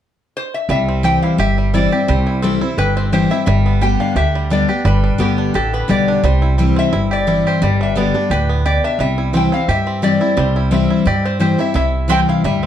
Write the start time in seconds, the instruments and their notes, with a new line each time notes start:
0.37 resonator guitar played with a steel bar C5
0.54 resonator guitar played with a steel bar E5
0.69 upright bass C2, steel-string acoustic guitar C3, five-string banjo G3, resonator guitar played with a steel bar E5
0.89 five-string banjo C4
1.03 steel-string acoustic guitar E3 G3 C4 E4, five-string banjo G4, resonator guitar played with a steel bar G5
1.22 five-string banjo E4, resonator guitar played with a steel bar F5
1.38 upright bass G1, steel-string acoustic guitar G2, five-string banjo G4, resonator guitar played with a steel bar E5
1.58 five-string banjo G3
1.74 steel-string acoustic guitar E3 G3 C4 E4, five-string banjo E4, resonator guitar played with a steel bar D5
1.92 steel-string acoustic guitar C4 E4, five-string banjo G4
2.08 upright bass C2, steel-string acoustic guitar C3, five-string banjo G3, resonator guitar played with a steel bar C5
2.27 five-string banjo E4
2.42 steel-string acoustic guitar E3 G3 C4 E4, five-string banjo C4, resonator guitar played with a steel bar A4
2.61 steel-string acoustic guitar C4 E4, five-string banjo E4
2.78 upright bass G1, steel-string acoustic guitar G2, five-string banjo G4, resonator guitar played with a steel bar B4
2.97 five-string banjo C4, resonator guitar played with a steel bar C5
3.12 steel-string acoustic guitar E3 G3 C4 E4, five-string banjo G4, resonator guitar played with a steel bar C5
3.30 steel-string acoustic guitar C4 E4, five-string banjo E4, resonator guitar played with a steel bar E5
3.46 upright bass G1, steel-string acoustic guitar G2, five-string banjo G3, resonator guitar played with a steel bar E5
3.66 five-string banjo B3
3.81 steel-string acoustic guitar D3 G3 B3 G4, five-string banjo G4, resonator guitar played with a steel bar G5
4.00 five-string banjo D4, resonator guitar played with a steel bar F5
4.15 upright bass D2, steel-string acoustic guitar D3, five-string banjo G4, resonator guitar played with a steel bar E5
4.35 five-string banjo G3
4.50 steel-string acoustic guitar D3 G3 B3 G4, five-string banjo D4, resonator guitar played with a steel bar D5
4.68 steel-string acoustic guitar B3 G4, five-string banjo G4
4.85 upright bass G1, steel-string acoustic guitar G2, five-string banjo G3, resonator guitar played with a steel bar B4
5.04 five-string banjo D4
5.18 upright bass G1, steel-string acoustic guitar D3 G3 B3 G4, five-string banjo B3, resonator guitar played with a steel bar G4
5.38 five-string banjo D4
5.54 upright bass A1, steel-string acoustic guitar D3, five-string banjo G4, resonator guitar played with a steel bar A4
5.73 five-string banjo B3, resonator guitar played with a steel bar B4
5.88 upright bass B1, steel-string acoustic guitar D3 G3 B3 G4, five-string banjo G4, resonator guitar played with a steel bar D5
6.08 five-string banjo D4
6.23 upright bass C2, steel-string acoustic guitar C3, five-string banjo G3, resonator guitar played with a steel bar C5
6.42 five-string banjo E4
6.58 steel-string acoustic guitar E3 G3 C4 E4, five-string banjo G3
6.76 five-string banjo C4, resonator guitar played with a steel bar E5
6.93 upright bass G1, steel-string acoustic guitar G2, five-string banjo E4
7.11 five-string banjo G4, resonator guitar played with a steel bar D5
7.27 steel-string acoustic guitar E3 G3 C4 E4, five-string banjo E4
7.47 five-string banjo G4, resonator guitar played with a steel bar C5
7.62 upright bass G1, steel-string acoustic guitar G2, five-string banjo G3, resonator guitar played with a steel bar D5
7.81 five-string banjo D4, resonator guitar played with a steel bar E5
7.96 steel-string acoustic guitar D3 G3 B3 G4, five-string banjo B3, resonator guitar played with a steel bar D5
8.14 steel-string acoustic guitar B3 G4, five-string banjo D4
8.30 upright bass D2, steel-string acoustic guitar A2, five-string banjo G4, resonator guitar played with a steel bar B4
8.49 five-string banjo B3
8.66 steel-string acoustic guitar B2, five-string banjo G4, resonator guitar played with a steel bar D5
8.84 five-string banjo D4, resonator guitar played with a steel bar E5
8.99 upright bass C2, steel-string acoustic guitar C3, five-string banjo G3, resonator guitar played with a steel bar E5
9.18 five-string banjo E4
9.33 steel-string acoustic guitar E3 G3 C4 E4, five-string banjo C4, resonator guitar played with a steel bar G5
9.52 steel-string acoustic guitar C4 E4, five-string banjo E4, resonator guitar played with a steel bar F5
9.68 upright bass G2, steel-string acoustic guitar G2, five-string banjo G4, resonator guitar played with a steel bar E5
9.87 five-string banjo C4
10.02 steel-string acoustic guitar E3 G3 C4 E4, five-string banjo G4, resonator guitar played with a steel bar D5
10.20 steel-string acoustic guitar C4 E4, five-string banjo E4
10.37 upright bass C2, steel-string acoustic guitar C3, five-string banjo G3, resonator guitar played with a steel bar C5
10.56 five-string banjo E4
10.71 steel-string acoustic guitar E3 G3 C4 E4, five-string banjo C4, resonator guitar played with a steel bar E5
10.90 five-string banjo E4
11.05 steel-string acoustic guitar G2, upright bass G2, five-string banjo G4, resonator guitar played with a steel bar D5
11.25 five-string banjo C4, resonator guitar played with a steel bar C5
11.40 steel-string acoustic guitar E3 G3 C4 E4, five-string banjo G4, resonator guitar played with a steel bar C5
11.58 steel-string acoustic guitar C4 E4, five-string banjo E4, resonator guitar played with a steel bar E5
11.74 upright bass C2, steel-string acoustic guitar C3, five-string banjo E4, resonator guitar played with a steel bar E5
12.08 steel-string acoustic guitar E3 G3 C4 E4, mandolin C4 E4 C5 G5, five-string banjo C4, resonator guitar played with a steel bar G5
12.29 five-string banjo E4, resonator guitar played with a steel bar F5
12.44 upright bass D2, steel-string acoustic guitar G2, five-string banjo G3, resonator guitar played with a steel bar E5
12.63 five-string banjo C4